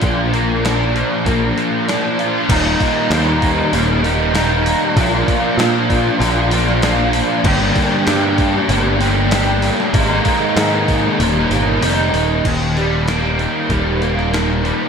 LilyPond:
<<
  \new Staff \with { instrumentName = "Overdriven electric guitar" } { \time 4/4 \key ees \major \tempo 4 = 96 <bes, f bes d' f'>8 bes8 d'8 f8 bes8 f8 d'8 f'8 | <ees, bes, ees g bes ees'>4 <ees g bes ees'>4 <ees, bes, ees g bes ees'>8 <ees g bes ees'>8 <ees g bes ees'>4 | <bes, f bes d' f'>4 <f bes d' f'>4 <bes, f bes d' f'>8 <bes d' f'>8 <f bes d' f'>4 | <g, d g bes d' g'>4 <g bes d' g'>4 <g, d g bes d' g'>8 <g bes d' g'>8 <g bes d' g'>4 |
<aes, ees aes bes ees'>4 <ees aes bes ees'>4 <ees, bes, ees g bes ees'>8 <ees g bes ees'>8 <ees g bes ees'>4 | ees,8 g8 bes8 ees8 g8 bes8 ees8 g8 | }
  \new Staff \with { instrumentName = "Picked electric bass" } { \clef bass \time 4/4 \key ees \major bes,,2 bes,,8 r4. | ees,,8 r8 ees,4 ees,,2 | bes,,8 r8 bes,4 bes,,2 | g,,8 r8 g,4 g,,2 |
aes,,8 r8 aes,4 ees,,8 g,,8 f,,8 ees,,8 | ees,,2 ees,,2 | }
  \new DrumStaff \with { instrumentName = "Drums" } \drummode { \time 4/4 <hho bd>8 hho8 <hho sn>8 hho8 <hho bd>8 hho8 <hho sn>8 hho8 | <cymc hho bd>8 <hho bd>8 <hho sn>8 <hho bd>8 hho8 hho8 <hho sn>8 hho8 | <hho bd>8 <hho bd>8 <hho sn>8 <hho bd>8 hho8 hho16 sn16 <hho sn>8 hho8 | <cymc bd>8 <hho bd>8 <hho sn>8 <hho bd>8 hho8 hho8 <hho sn>8 hho16 sn16 |
<hho bd>8 <hho bd>8 <hho sn>8 <hho bd>8 hho8 hho8 hho8 hho8 | <cymc hho bd>8 hho8 <hho sn>8 hho8 <hho bd>8 hho16 sn16 <hho sn>8 hho8 | }
>>